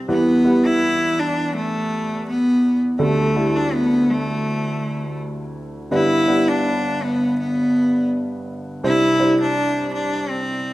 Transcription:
0.08 E2 E3 G3 B3 E4 B4
0.44 G3 B3 E4 B4
0.66 E4
1.20 D4
1.56 A3
2.29 B3
2.99 D2 D3 G3 A3 D4 A4
3.35 G3 A3 D4 E4
3.56 D4
3.73 B3
4.10 A3
5.91 G1 G2 G3 B3 D4 E4 B4
6.28 G3 B3 D4 B4
6.48 D4
7.04 B3
7.39 B3
8.84 C2 C3 G3 D4 E4 C5
9.19 G3 D4 E4 C5
9.41 D4
9.94 D4
10.30 C4

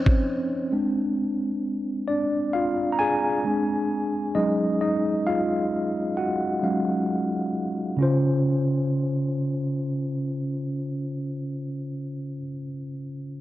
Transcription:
Already playing: C4 C#4 C5 C#5
0.06 kick
0.72 G#3 C4 D4
2.07 D4 D5
2.53 F4 F5
2.92 A#5
2.99 G#4 G#5
3.44 G#3 C4 D4
4.35 F#3 G#3 C#4 D#4 G#4 D#5
4.81 D#4 D#5
5.27 F4 F5
6.17 F#4 F#5
6.63 F#3 G#3 C#4 F5
7.97 C#3 C#4
8.01 F4 C5

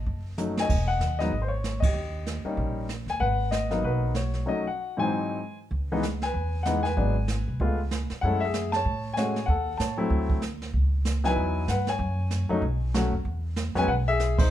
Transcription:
Already playing: D#5 A5
0.06 F#1, brush sweep, kick
0.38 F#3 A3 C#4 D#4, hi-hat pedal, mid tom
0.57 G#5, snare
0.62 D#5
0.69 E1, brush sweep, kick, crash
0.88 F#5
0.99 D#2, snare, hi-hat pedal
1.19 F#3 G#3 B3 D#4 D#5, snare
1.31 G#1, brush sweep, kick
1.42 C5
1.48 C#5
1.64 snare, hi-hat pedal
1.80 D#5, kick, ride
1.85 G4
1.94 D#2, brush sweep
2.27 snare, hi-hat pedal
2.44 G3 A#3 C#4 D#4, muted upright bass stroke
2.57 A#1, brush sweep, kick
2.89 snare, hi-hat pedal
3.06 D#2 G#5, snare
3.19 G#1 B4 F#5, brush sweep, kick
3.51 D#5, snare, hi-hat pedal
3.71 F#3 A#3 B3 D#4, snare
3.82 B1 F#4 B4, brush sweep, kick
4.15 C#5, snare, hi-hat pedal
4.34 snare
4.46 F#3 A3 C#4 D#4 F#4 D#5
4.67 F#5
4.97 G#2 E3 F#3 C4 D#4 C5 G#5
5.71 C#2, brush sweep, kick
5.92 E3 G#3 B3 D#4
6.03 snare, hi-hat pedal
6.22 B4 G#5, snare
6.34 E2, brush sweep, kick
6.63 E3 G#3 B3 D#4 B4 F#5, snare, hi-hat pedal
6.83 B4 G#5, snare
6.97 G#1 F#3 G#3 B3 D4, brush sweep, kick
7.28 snare, hi-hat pedal
7.48 B1
7.60 C#2 G#3 A3 B3 F4, brush sweep, kick
7.91 snare, hi-hat pedal
8.10 muted upright bass stroke, snare
8.21 F#2 G#3 A3 C#4 E4 F#5, brush sweep, kick
8.26 A4
8.40 E5
8.45 G#4
8.54 snare, hi-hat pedal
8.72 A5, snare
8.76 C#5
8.85 A2, brush sweep, kick
9.13 G#3 A3 C#4 G#5, snare, hi-hat pedal
9.18 F#4 C#5
9.36 snare
9.46 D#2 A4 F#5, brush sweep, kick
9.77 A2 C#5 A5, snare, hi-hat pedal
9.97 F#3 A3 C4 E4
10.10 D2, brush sweep, kick
10.30 kick
10.42 snare, hi-hat pedal
10.62 snare
10.73 C#2, brush sweep, kick
11.05 snare, hi-hat pedal
11.24 F#3 B3 D#4 E4 B4 G#5, snare
11.36 E2, brush sweep, kick
11.68 G2 B4 F#5, snare, hi-hat pedal
11.87 C#5 G#5, snare
11.99 F#2, brush sweep, kick
12.31 snare, hi-hat pedal
12.49 F#2 F#3 A3 C#4 D#4
12.62 B1, brush sweep, kick
12.94 F#3 A3 C#4 F#4, snare, hi-hat pedal
13.12 F2
13.25 E2, brush sweep, kick
13.56 snare, hi-hat pedal
13.75 F2 F#3 G#3 B3 C#4 B4 G#5, snare
13.88 B1 B4 F#5, brush sweep, kick
14.08 G#4 E5
14.20 snare, hi-hat pedal
14.38 D#4 C5, kick, crash

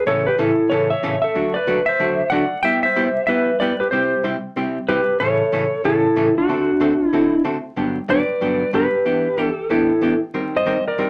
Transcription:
0.06 A2 C#3 E3 A3 C#4 A4 C#5
0.27 G4 B4
0.38 A2 C#3 E3 A3 C#4 E4 A4
0.70 A2 C#3 E3 A3 C#4 A4 C#5
0.90 C#5 E5
1.03 A2 C#3 E3 A3 C#4 A4
1.22 A4 E5
1.35 D3 F#3 A3 D4 F#4
1.54 B4 D5
1.67 D3 F#3 A3 D4 F#4
1.86 C5 E5
1.99 D3 F#3 A3 D4 F#4
2.30 D3 F#3 A3 D4 F#4 D5 F#5
2.63 G3 B3 E4 G4 E5 G5
2.83 C5 E5
2.96 G3 B3 E4 G4
3.27 G3 B3 E4 G4 B4 E5
3.60 G3 B3 E4 G4 B4 D5
3.80 G4 B4
3.91 C3 G3 C4 E4 G4 C5
4.23 C3 G3 C4 E4 G4
4.56 C3 G3 C4 E4 G4
4.88 C3 G3 C4 E4 G4 B4
5.20 A2 C#3 E3 A3 C#4 A4 C#5
5.52 A2 C#3 E3 A3 C#4 A4
5.84 A2 C#3 E3 A3 C#4 E4 A4
6.16 A2 C#3 E3 A3 C#4 A4
6.38 D4 F#4
6.49 D3 A3 C4 F#4 A4
6.80 D3 A3 C4 F#4 A4
7.10 D3 A3 C4 E4 F#4
7.14 A4
7.44 D3 A3 C4 F#4 A4
7.76 G2 D3 F#3 B3 D4 G4
8.08 G2 D3 F#3 B3 D4 G4 B4 D5
8.41 G2 D3 F#3 B3 D4 G4
8.73 G2 D3 F#3 B3 D4 G4 B4
9.05 E3 B3 D4 G4
9.37 E3 B3 D4 G4
9.44 A4
9.70 E3 B3 D4 E4 G4 A4
10.01 E3 B3 D4 G4
10.34 D#3 G3 C4 G4 A#4
10.56 C5 D#5
10.66 D#3 G3 C4 G4 A#4
10.88 A#4 D5
10.98 D#3 G3 C4 G4 A#4

